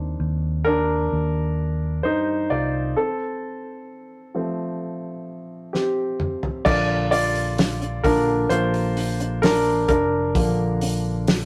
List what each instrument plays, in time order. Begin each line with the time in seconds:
Already playing: fingered electric bass D#2, grand piano D#3 C4 D4
0.20 fingered electric bass D#2
0.65 grand piano D4 A#4
1.12 fingered electric bass D#2
2.03 fingered electric bass G2, grand piano D#4 C5
2.50 fingered electric bass C2, grand piano F4 D5
2.96 grand piano C4 A4
4.35 grand piano F3 A3 C4
5.73 grand piano C4 G4, snare
6.20 mid tom
6.43 floor tom
6.64 fingered electric bass A#1, grand piano D3 F3 A#3 F4 D5, kick, crash
7.11 grand piano F4 D5, hi-hat pedal, open hi-hat
7.35 open hi-hat
7.58 snare, hi-hat pedal, open hi-hat
7.81 hi-hat pedal
8.04 fingered electric bass A#1, grand piano D3 F3 A#3 D4 A#4, kick, hi-hat pedal, open hi-hat
8.49 fingered electric bass A#1, grand piano F4 C5, hi-hat pedal, open hi-hat
8.74 open hi-hat
8.97 hi-hat pedal, open hi-hat
9.20 hi-hat pedal
9.42 grand piano D4 A#4, snare, hi-hat pedal, open hi-hat
9.88 fingered electric bass F1, grand piano D4 A#4, kick, hi-hat pedal, open hi-hat
10.35 fingered electric bass A#1, grand piano D3 F3 A#3, kick, hi-hat pedal, open hi-hat
10.81 hi-hat pedal, open hi-hat
11.27 snare, hi-hat pedal, open hi-hat